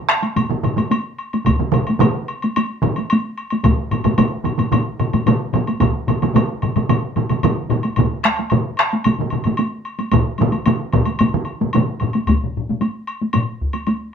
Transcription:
0.09 taiko rim, high woodblock
0.23 taiko high, high woodblock
0.36 taiko low-mid, taiko mid, taiko high, high woodblock
0.49 taiko low-mid, taiko mid
0.63 taiko low-mid, taiko mid, high woodblock
0.76 taiko low-mid, taiko mid, taiko high, high woodblock
0.91 taiko high, high woodblock
1.19 high woodblock
1.33 taiko high, high woodblock
1.45 taiko, taiko low-mid, taiko mid, taiko high, high woodblock
1.59 taiko low-mid, taiko mid
1.72 taiko low-mid, taiko mid, taiko high, high woodblock
1.87 taiko high, high woodblock
1.99 taiko low-mid, taiko mid, taiko high, high woodblock
2.28 high woodblock
2.42 taiko high, high woodblock
2.56 taiko high, high woodblock
2.82 taiko low-mid, taiko mid, high woodblock
2.96 taiko high, high woodblock
3.10 taiko high, high woodblock
3.38 high woodblock
3.50 taiko high, high woodblock
3.64 taiko, taiko low-mid, taiko mid, taiko high, high woodblock
3.91 taiko low-mid, taiko mid, taiko high, high woodblock
4.04 taiko low-mid, taiko mid, taiko high, high woodblock
4.18 taiko low-mid, taiko mid, taiko high, high woodblock
4.44 taiko low-mid, taiko mid, high woodblock
4.58 taiko low-mid, taiko mid, taiko high, high woodblock
4.72 taiko low-mid, taiko mid, taiko high, high woodblock
5.00 taiko low-mid, taiko mid, high woodblock
5.13 taiko low-mid, taiko mid, taiko high, high woodblock
5.26 taiko low-mid, taiko mid, taiko high, high woodblock
5.53 taiko low-mid, taiko mid, high woodblock
5.67 taiko high, high woodblock
5.80 taiko, taiko low-mid, taiko mid, taiko high, high woodblock
6.08 taiko low-mid, taiko mid, taiko high, high woodblock
6.22 taiko low-mid, taiko mid, taiko high, high woodblock
6.34 taiko low-mid, taiko mid, taiko high, high woodblock
6.62 taiko low-mid, taiko mid, high woodblock
6.76 taiko low-mid, taiko mid, taiko high, high woodblock
6.90 taiko low-mid, taiko mid, taiko high, high woodblock
7.16 taiko low-mid, taiko mid, high woodblock
7.30 taiko low-mid, taiko mid, taiko high, high woodblock
7.43 taiko low-mid, taiko mid, taiko high, high woodblock
7.70 taiko low-mid, taiko mid, high woodblock
7.83 taiko high, high woodblock
7.96 taiko, taiko low-mid, taiko mid, taiko high, high woodblock
8.23 taiko rim, taiko high, high woodblock
8.36 taiko high, high woodblock
8.50 taiko low-mid, taiko mid, taiko high, high woodblock
8.77 taiko rim, high woodblock
8.91 taiko high, high woodblock
9.04 taiko low-mid, taiko mid, taiko high, high woodblock
9.19 taiko low-mid, taiko mid
9.30 taiko low-mid, taiko mid, high woodblock
9.44 taiko low-mid, taiko mid, taiko high, high woodblock
9.57 taiko high, high woodblock
9.85 high woodblock
9.99 taiko high, high woodblock
10.12 taiko, taiko low-mid, taiko mid, taiko high, high woodblock
10.38 taiko low-mid, taiko mid, taiko high, high woodblock
10.52 taiko high, high woodblock
10.66 taiko low-mid, taiko mid, taiko high, high woodblock
10.93 taiko, taiko low-mid, taiko mid, high woodblock
11.05 taiko high, high woodblock
11.19 taiko low-mid, taiko mid, taiko high, high woodblock
11.34 taiko low-mid, taiko mid
11.45 high woodblock
11.61 taiko low-mid, taiko mid, taiko high
11.73 taiko low-mid, taiko mid, taiko high, high woodblock
12.00 taiko low-mid, taiko mid, high woodblock
12.13 taiko high, high woodblock
12.27 taiko, taiko low-mid, taiko high, high woodblock
12.44 taiko low-mid
12.57 taiko low-mid
12.69 taiko low-mid, taiko high
12.81 taiko high, high woodblock
13.07 high woodblock
13.21 taiko high
13.33 taiko low-mid, taiko high, high woodblock
13.61 taiko
13.73 taiko high, high woodblock
13.87 taiko high, high woodblock

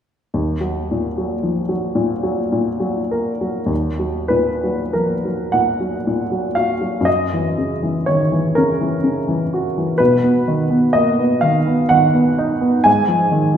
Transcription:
0.34 D#2
0.61 F#3
0.91 A#2
1.18 F#3
1.43 F3
1.69 F#3
1.95 A#2
2.23 F#3
2.52 A#2
2.80 F#3
3.11 A#4
3.41 F#3
3.66 D#2
3.99 F#3
4.28 A#2 B4
4.64 F#3
4.93 F3 A#4
5.25 F#3
5.52 A#2 F#5
5.80 F#3
6.07 A#2
6.32 F#3
6.55 F#4 F5
6.81 F#3
7.01 F#2
7.05 D#5
7.33 E3
7.58 C#3
7.83 E3
8.06 D#3 C#5
8.32 E3
8.55 C#3 A#4
8.80 E3
9.04 C#3
9.28 E3
9.53 F#4
9.78 E3
9.98 B2 B4
10.24 B3
10.48 D#3
10.70 B3
10.93 A#3 D#5
11.19 B3
11.41 D#3 F5
11.66 B3
11.89 D#3 F#5
12.15 B3
12.38 D#4
12.61 B3
12.84 G#2 G#5
13.08 F3
13.31 D#3

